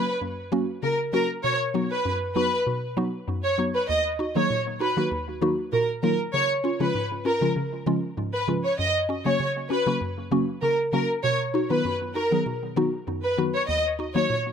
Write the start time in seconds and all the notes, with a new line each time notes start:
Already playing: B4
0.21 F#2
0.52 F#3 A#3 C#4 F#4
0.83 C#3 A#4
1.13 F#3 A#3 C#4 F#4 A#4
1.44 B2 C#5
1.74 F#3 B3 D#4 F#4
1.91 B4
2.05 F#2
2.36 F#3 B3 D#4 F#4 B4
2.67 B2
2.97 F#3 B3 D#4 F#4
3.28 F#2
3.44 C#5
3.58 F#3 B3 D#4 F#4
3.75 B4
3.89 D#2 D#5
4.19 D#4 F#4
4.35 D#3 F#3 A#3 D#4 G#4 C#5
4.50 A#2
4.80 D#4 F#4 B4
4.97 D#3 F#3 A#3 D#4 F#4
5.11 D#2
5.41 D#3 F#3 A#3 D#4 F#4
5.73 A#2 A#4
6.03 D#3 F#3 A#3 D#4 F4 A#4
6.34 C#3 C#5
6.64 C#4 F4
6.80 C#3 F3 G#3 C#4 F4 B4
6.95 G#2
7.25 C#4 F4 A#4
7.41 C#3 F3 G#3 C#4 F4
7.56 C#3
7.86 C#3 F3 G#3 C#4 F4
8.18 G#2
8.34 B4
8.48 C#3 F3 G#3 C#4 F4
8.64 C#5
8.79 F#2 D#5
9.09 C#4 F#4
9.25 C#3 F#3 A#3 C#4 F#4 C#5
9.40 C#3
9.70 C#4 F#4 B4
9.86 C#3 F#3 A#3 C#4 F#4
10.01 F#2
10.31 C#3 F#3 A#3 C#4 F#4
10.62 C#3 A#4
10.93 C#3 F#3 A#3 C#4 F#4 A#4
11.24 B2 C#5
11.54 D#4 F#4
11.70 D#3 F#3 B3 D#4 F4 B4
11.85 F#2
12.15 D#4 F#4 A#4
12.31 D#3 F#3 B3 D#4 G#4
12.46 B2
12.76 D#3 F#3 B3 D#4 F#4
13.08 F#2
13.23 B4
13.38 D#3 F#3 B3 D#4 F#4
13.54 C#5
13.69 D#2 D#5
13.99 D#4 F#4
14.15 D#3 F#3 A#3 D#4 F#4 C#5
14.30 A#2